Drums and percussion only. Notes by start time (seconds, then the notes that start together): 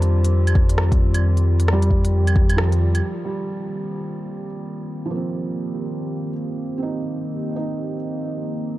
0.02 closed hi-hat
0.24 closed hi-hat
0.47 closed hi-hat, claves
0.55 kick
0.69 closed hi-hat
0.78 cross-stick
0.92 kick, closed hi-hat
1.14 closed hi-hat, claves
1.37 closed hi-hat
1.60 closed hi-hat
1.68 cross-stick
1.82 closed hi-hat
1.91 kick
2.05 closed hi-hat
2.27 closed hi-hat, claves
2.36 kick
2.50 closed hi-hat, claves
2.58 cross-stick
2.72 closed hi-hat
2.95 closed hi-hat, claves